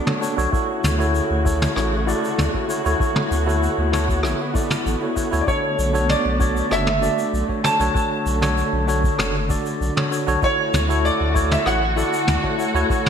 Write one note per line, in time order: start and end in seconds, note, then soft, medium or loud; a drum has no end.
0.00 0.49 A3 medium
0.00 0.49 B3 medium
0.00 0.49 D4 medium
0.06 0.18 D4 medium
0.06 0.18 F#4 medium
0.06 0.18 A4 medium
0.06 0.19 C#5 medium
0.06 mid tom medium
0.21 0.33 D4 medium
0.21 0.34 F#4 medium
0.21 0.34 A4 medium
0.21 0.34 C#5 medium
0.21 shaker medium
0.36 0.47 B1 loud
0.36 0.49 D4 medium
0.36 0.49 F#4 medium
0.36 0.49 A4 medium
0.36 0.49 C#5 loud
0.36 shaker medium
0.51 2.98 C#3 medium
0.51 13.09 D3 medium
0.51 5.43 A3 medium
0.51 0.95 E4 medium
0.51 0.95 F#4 medium
0.51 5.44 F#4 medium
0.51 0.96 A4 medium
0.51 0.96 C#5 medium
0.51 kick loud
0.51 shaker soft
0.84 1.21 D2 medium
0.84 mid tom medium
0.84 shaker medium
0.98 1.41 E4 medium
0.98 1.42 F#4 medium
0.98 1.42 A4 medium
0.98 1.42 C#5 loud
0.98 shaker soft
1.15 shaker soft
1.30 1.67 D2 medium
1.45 1.71 E4 medium
1.45 1.71 F#4 medium
1.45 1.72 A4 medium
1.45 1.72 C#5 medium
1.45 kick loud
1.45 shaker medium
1.62 mid tom medium
1.62 shaker medium
1.75 2.14 A1 medium
1.75 1.92 E4 medium
1.75 1.93 F#4 medium
1.75 1.93 A4 medium
1.75 1.93 C#5 medium
1.75 cross-stick medium
1.75 shaker soft
2.06 2.50 E4 medium
2.06 2.50 F#4 medium
2.06 2.51 A4 medium
2.06 2.51 D5 loud
2.06 shaker medium
2.25 shaker medium
2.38 2.48 D2 medium
2.38 mid tom medium
2.38 shaker soft
2.54 2.65 E4 medium
2.54 2.66 F#4 medium
2.54 2.66 A4 medium
2.54 2.66 C#5 medium
2.54 kick medium
2.68 2.81 E4 medium
2.68 2.81 F#4 medium
2.68 2.81 A4 medium
2.68 2.82 C#5 medium
2.68 shaker medium
2.84 2.95 D2 medium
2.84 2.96 E4 loud
2.84 2.97 F#4 medium
2.84 2.97 A4 medium
2.84 2.97 C#5 loud
2.84 shaker medium
2.99 5.45 B3 medium
2.99 3.43 E4 medium
2.99 3.43 F#4 medium
2.99 3.43 A4 medium
2.99 3.43 C#5 loud
2.99 kick loud
2.99 shaker soft
3.16 mid tom medium
3.31 3.68 D2 medium
3.31 shaker medium
3.46 3.89 E4 medium
3.46 3.89 F#4 medium
3.46 3.89 A4 medium
3.46 3.90 C#5 loud
3.46 shaker medium
3.63 shaker soft
3.78 4.25 D2 medium
3.92 4.18 E4 medium
3.92 4.19 F#4 medium
3.92 4.19 A4 medium
3.92 4.19 C#5 loud
3.92 mid tom medium
3.92 shaker medium
4.09 kick loud
4.09 shaker medium
4.23 4.34 A1 medium
4.23 4.40 E4 medium
4.23 4.40 F#4 medium
4.23 4.40 A4 medium
4.23 4.41 C#5 medium
4.23 cross-stick medium
4.23 shaker medium
4.54 4.97 E4 medium
4.54 4.98 F#4 medium
4.54 4.98 A4 medium
4.54 4.98 D5 medium
4.54 kick loud
4.54 shaker medium
4.70 mid tom medium
4.70 shaker medium
4.86 4.96 A1 loud
4.86 shaker soft
5.01 5.13 E4 medium
5.01 5.13 F#4 medium
5.01 5.13 A4 medium
5.01 5.14 C#5 medium
5.15 5.28 E4 medium
5.15 5.28 F#4 medium
5.15 5.29 A4 medium
5.15 5.29 C#5 medium
5.15 kick medium
5.15 shaker medium
5.31 5.42 D2 medium
5.31 5.43 E4 loud
5.31 5.44 F#4 medium
5.31 5.44 A4 medium
5.31 5.44 C#5 loud
5.31 shaker medium
5.41 5.48 D5 medium
5.46 10.38 A3 medium
5.46 7.92 B3 medium
5.46 5.90 D4 medium
5.46 5.90 F#4 medium
5.46 5.91 A4 medium
5.46 5.91 C#5 medium
5.46 6.06 C#5 medium
5.46 kick loud
5.46 shaker soft
5.79 6.16 B1 medium
5.79 shaker medium
5.93 6.36 D4 medium
5.93 6.36 F#4 medium
5.93 6.37 A4 medium
5.93 6.37 C#5 loud
5.93 shaker medium
6.09 6.73 D5 medium
6.09 mid tom medium
6.09 shaker medium
6.25 6.62 B1 medium
6.39 6.66 D4 medium
6.39 6.66 F#4 medium
6.39 6.66 A4 medium
6.39 6.66 C#5 loud
6.39 kick loud
6.39 shaker medium
6.57 shaker medium
6.70 7.09 F#1 medium
6.70 6.87 D4 medium
6.70 6.87 F#4 medium
6.70 6.88 A4 medium
6.70 6.88 C#5 medium
6.70 7.30 E5 loud
6.70 cross-stick medium
6.70 shaker soft
6.87 mid tom medium
7.01 7.45 D4 medium
7.01 7.45 F#4 medium
7.01 7.45 A4 medium
7.01 7.45 D5 loud
7.01 shaker medium
7.19 shaker medium
7.33 7.43 B1 medium
7.33 shaker soft
7.48 7.60 D4 medium
7.48 7.60 F#4 medium
7.48 7.61 A4 medium
7.48 7.61 C#5 medium
7.48 kick medium
7.63 7.76 D4 medium
7.63 7.76 F#4 medium
7.63 7.76 A4 medium
7.63 7.77 C#5 medium
7.63 8.84 A5 loud
7.63 mid tom medium
7.63 shaker medium
7.79 7.89 B1 medium
7.79 7.91 D4 loud
7.79 7.91 F#4 medium
7.79 7.92 A4 medium
7.79 7.92 C#5 loud
7.79 shaker medium
7.94 8.38 D4 medium
7.94 8.38 F#4 medium
7.94 8.38 A4 medium
7.94 8.38 C#5 medium
7.94 kick loud
7.94 shaker soft
8.26 8.63 B1 medium
8.26 shaker medium
8.41 8.84 D4 medium
8.41 8.84 F#4 medium
8.41 8.84 A4 medium
8.41 8.85 C#5 loud
8.41 mid tom medium
8.41 shaker medium
8.58 shaker soft
8.73 9.10 B1 medium
8.87 9.13 D4 medium
8.87 9.14 F#4 medium
8.87 9.14 A4 medium
8.87 9.14 C#5 loud
8.87 shaker medium
9.04 kick loud
9.04 shaker medium
9.18 9.56 F#1 medium
9.18 9.35 D4 medium
9.18 9.35 F#4 medium
9.18 9.35 A4 medium
9.18 9.36 C#5 medium
9.18 cross-stick medium
9.18 mid tom medium
9.18 shaker medium
9.49 9.92 D4 medium
9.49 9.93 F#4 medium
9.49 9.93 A4 medium
9.49 9.93 D5 loud
9.49 kick loud
9.49 shaker medium
9.66 shaker medium
9.81 9.91 B1 medium
9.81 shaker medium
9.95 10.07 D4 medium
9.95 10.08 F#4 medium
9.95 10.08 A4 medium
9.95 10.08 C#5 medium
9.95 mid tom medium
10.11 10.23 D4 medium
10.11 10.23 F#4 medium
10.11 10.24 A4 medium
10.11 10.24 C#5 medium
10.11 shaker medium
10.27 10.37 B1 medium
10.27 10.39 D4 medium
10.27 10.39 F#4 medium
10.27 10.39 A4 medium
10.27 10.39 C#5 loud
10.27 shaker medium
10.42 13.09 A3 medium
10.42 10.85 E4 medium
10.42 13.09 F#4 medium
10.42 10.85 F#4 medium
10.42 10.86 A4 medium
10.42 10.86 C#5 medium
10.42 11.07 C#5 loud
10.42 kick loud
10.42 shaker soft
10.73 11.11 D2 medium
10.73 mid tom medium
10.73 shaker medium
10.89 11.31 E4 loud
10.89 11.32 F#4 medium
10.89 11.32 A4 medium
10.89 11.32 C#5 loud
10.89 shaker medium
11.05 11.53 D5 loud
11.05 shaker soft
11.20 11.57 D2 medium
11.34 11.61 E4 medium
11.34 11.61 F#4 medium
11.34 11.61 A4 medium
11.34 11.61 C#5 loud
11.34 kick loud
11.34 shaker medium
11.51 11.67 E5 medium
11.51 mid tom medium
11.51 shaker medium
11.65 12.03 A1 medium
11.65 11.82 E4 medium
11.65 11.82 F#4 medium
11.65 11.83 A4 medium
11.65 11.83 C#5 medium
11.65 13.09 F#5 loud
11.65 cross-stick medium
11.65 shaker medium
11.96 12.40 E4 medium
11.96 12.40 F#4 medium
11.96 12.40 A4 medium
11.96 12.40 D5 loud
11.96 shaker medium
12.13 shaker medium
12.28 12.38 D2 medium
12.28 mid tom medium
12.28 shaker medium
12.43 12.55 E4 medium
12.43 12.55 F#4 medium
12.43 12.55 A4 medium
12.43 12.56 C#5 medium
12.43 kick medium
12.58 12.71 E4 medium
12.58 12.71 F#4 medium
12.58 12.71 A4 medium
12.58 12.71 C#5 medium
12.58 shaker medium
12.74 12.84 D2 medium
12.74 12.86 E4 loud
12.74 12.86 F#4 medium
12.74 12.86 A4 medium
12.74 12.87 C#5 loud
12.74 shaker soft
12.89 13.09 E4 medium
12.89 13.09 F#4 medium
12.89 13.09 A4 medium
12.89 13.09 C#5 loud
12.89 kick loud
12.89 shaker soft
13.06 mid tom medium